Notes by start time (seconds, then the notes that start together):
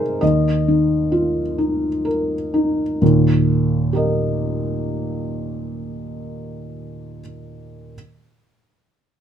Already playing: C3 G#3 D#4 G#4 A#4 C5
0.21 D#2 D#5
0.68 D#3
1.12 F4
1.58 D#4
2.05 A#4
2.54 D#4
3.02 D#2 A#2
3.93 G4 A#4 D#5